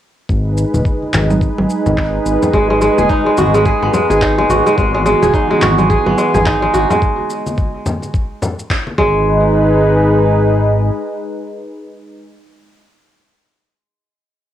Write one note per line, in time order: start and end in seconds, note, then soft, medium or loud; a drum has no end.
0.29 0.65 G#1 loud
0.29 4.74 G#3 medium
0.29 4.74 D#4 medium
0.29 6.98 G#4 medium
0.29 4.74 B4 medium
0.29 kick loud
0.29 shaker soft
0.58 shaker medium
0.74 0.81 D#1 medium
0.74 high conga medium
0.74 shaker soft
0.85 kick loud
0.85 shaker soft
1.02 high conga soft
1.13 1.49 G#1 medium
1.13 clap medium
1.13 low conga medium
1.13 shaker medium
1.30 low conga medium
1.30 shaker soft
1.41 kick loud
1.41 shaker soft
1.58 1.66 G#1 medium
1.58 low conga medium
1.70 shaker medium
1.86 2.19 G#1 medium
1.86 low conga medium
1.86 shaker soft
1.97 kick medium
1.97 clap medium
1.97 shaker soft
2.26 2.37 G#1 loud
2.26 shaker medium
2.42 low conga medium
2.42 shaker soft
2.53 2.89 G#1 loud
2.53 2.69 G#3 medium
2.53 kick loud
2.53 shaker soft
2.70 2.80 G#3 medium
2.81 3.25 G#3 medium
2.81 shaker medium
2.98 3.06 D#1 medium
2.98 3.65 G#4 medium
2.98 high conga medium
2.98 shaker soft
3.10 4.21 D#4 medium
3.10 kick loud
3.10 shaker soft
3.26 3.53 G#3 medium
3.37 3.73 G#1 medium
3.37 4.49 F#4 medium
3.37 high conga medium
3.37 low conga medium
3.37 shaker medium
3.54 3.92 G#3 medium
3.54 muted conga soft
3.54 shaker soft
3.65 4.10 G#4 medium
3.65 kick loud
3.65 shaker soft
3.82 3.90 G#1 medium
3.82 5.69 B3 medium
3.94 4.37 G#3 medium
3.94 low conga medium
3.94 shaker medium
4.10 4.43 G#1 medium
4.10 5.22 G#4 medium
4.10 shaker soft
4.22 5.33 D#4 medium
4.22 kick loud
4.22 clap medium
4.22 shaker soft
4.38 4.65 G#3 medium
4.38 muted conga medium
4.49 4.60 G#1 loud
4.49 5.61 F#4 medium
4.49 high conga medium
4.49 shaker medium
4.66 4.77 G#3 medium
4.66 shaker soft
4.78 5.13 G#1 loud
4.78 7.00 E3 medium
4.78 4.93 G#3 medium
4.78 7.00 B3 medium
4.78 7.00 F#4 medium
4.78 kick loud
4.78 shaker soft
4.94 5.04 G#3 medium
5.06 5.49 G#3 medium
5.06 shaker medium
5.22 5.30 D#1 medium
5.22 5.89 G#4 medium
5.22 high conga medium
5.22 shaker soft
5.34 6.45 D#4 medium
5.34 kick loud
5.34 shaker soft
5.50 5.77 G#3 medium
5.50 high conga soft
5.61 5.97 G#1 medium
5.61 6.73 F#4 medium
5.61 clap medium
5.61 low conga medium
5.61 shaker medium
5.78 6.17 G#3 medium
5.78 low conga medium
5.78 shaker soft
5.90 6.34 G#4 medium
5.90 kick loud
5.90 shaker soft
6.06 6.14 G#1 medium
6.06 7.93 B3 medium
6.06 low conga medium
6.18 6.61 G#3 medium
6.18 shaker medium
6.34 6.68 G#1 medium
6.34 7.71 G#4 medium
6.34 low conga loud
6.34 shaker soft
6.46 8.08 D#4 medium
6.46 kick loud
6.46 clap medium
6.46 shaker soft
6.62 6.89 G#3 medium
6.74 6.85 G#1 loud
6.74 8.20 F#4 medium
6.74 shaker medium
6.90 8.97 G#3 medium
6.90 low conga medium
6.90 shaker soft
7.02 kick loud
7.02 shaker soft
7.19 high conga soft
7.30 shaker medium
7.46 high conga medium
7.46 shaker soft
7.58 kick loud
7.58 shaker soft
7.86 high conga medium
7.86 low conga medium
7.86 shaker medium
8.02 muted conga soft
8.02 shaker soft
8.14 kick loud
8.14 shaker soft
8.42 low conga medium
8.42 shaker medium
8.59 shaker soft
8.70 kick loud
8.70 clap medium
8.70 shaker soft
8.87 muted conga medium
8.98 10.91 G#1 medium
8.98 11.05 G#3 medium
8.98 12.27 G#3 medium
8.98 12.27 D#4 medium
8.98 12.27 G#4 medium
8.98 12.27 B4 medium
8.98 kick loud
8.98 high conga medium